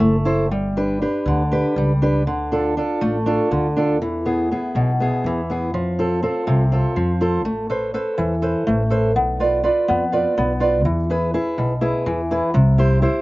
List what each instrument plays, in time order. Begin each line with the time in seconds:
Already playing: steel-string acoustic guitar E4 A4 C5
0.00 upright bass F#1, steel-string acoustic guitar A3
0.25 steel-string acoustic guitar E4 A4 C5
0.50 upright bass G1, steel-string acoustic guitar G3
0.77 steel-string acoustic guitar D4 G4 B4
1.02 steel-string acoustic guitar D4 G4 B4
1.26 upright bass D2, steel-string acoustic guitar D3
1.52 steel-string acoustic guitar D4 G4 B4
1.76 upright bass C#2, steel-string acoustic guitar G3
2.02 steel-string acoustic guitar D4 G4 B4
2.26 upright bass D2, steel-string acoustic guitar D3
2.52 steel-string acoustic guitar D4 F4 A4
2.77 steel-string acoustic guitar D4 F4 A4
3.01 upright bass A1, steel-string acoustic guitar A3
3.26 steel-string acoustic guitar D4 F4 A4
3.51 upright bass D2, steel-string acoustic guitar D3
3.77 steel-string acoustic guitar D4 F4 A4
4.00 upright bass E2, steel-string acoustic guitar E3
4.26 steel-string acoustic guitar B3 E4 G#4
4.51 steel-string acoustic guitar B3 E4 G#4
4.75 upright bass B1, steel-string acoustic guitar B2
5.00 steel-string acoustic guitar B3 E4 G#4
5.24 upright bass E2, steel-string acoustic guitar E3
5.50 steel-string acoustic guitar B3 E4 G#4
5.74 upright bass F2, steel-string acoustic guitar F3
5.99 steel-string acoustic guitar C4 F4 A4
6.23 steel-string acoustic guitar C4 F4 A4
6.47 upright bass C2, steel-string acoustic guitar C3
6.72 steel-string acoustic guitar C4 F4 A4
6.96 upright bass F2, steel-string acoustic guitar F3
7.21 steel-string acoustic guitar C4 F4 A4
7.45 upright bass A1, steel-string acoustic guitar A3
7.70 steel-string acoustic guitar A4 B4 C5
7.94 steel-string acoustic guitar A4 B4 C5
8.18 upright bass E2, steel-string acoustic guitar E3
8.42 steel-string acoustic guitar A4 B4 C5
8.67 upright bass A1, steel-string acoustic guitar A3
8.90 steel-string acoustic guitar A4 B4 C5
9.16 upright bass B1, steel-string acoustic guitar B3
9.40 steel-string acoustic guitar F4 B4 D5
9.64 steel-string acoustic guitar F4 B4 D5
9.88 upright bass F2, steel-string acoustic guitar B3
10.12 steel-string acoustic guitar F4 B4 D5
10.38 upright bass B1, steel-string acoustic guitar B3
10.60 steel-string acoustic guitar F4 B4 D5
10.85 upright bass E2, steel-string acoustic guitar E3
11.10 steel-string acoustic guitar E4 G#4 B4
11.34 steel-string acoustic guitar E4 G#4 B4
11.58 upright bass B1, steel-string acoustic guitar B2
11.81 steel-string acoustic guitar E4 G#4 B4
12.06 upright bass E2, steel-string acoustic guitar E3
12.31 steel-string acoustic guitar E4 G#4 B4
12.54 upright bass C2, steel-string acoustic guitar C3
12.78 steel-string acoustic guitar E4 G4 C5
13.02 steel-string acoustic guitar E4 G4 C5